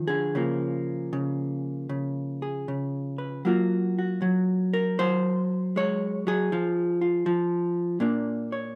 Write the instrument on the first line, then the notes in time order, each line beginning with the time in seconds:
hollow-body jazz guitar
Already playing: F3 F4
0.08 D3 G#4
0.35 C#3 F3 A#3
1.13 C#3
1.89 C#3
2.42 G#4
2.68 C#3
3.18 B4
3.45 F#3 A#3 F4 F#4
3.99 F#4
4.22 F#3
4.73 A#4
4.99 F#3 C5
5.76 G#3 C#5
6.27 F#3 G#4
6.52 F3 F4
7.01 F4
7.26 F3
8.00 A#2 A#3 D4
8.52 C#5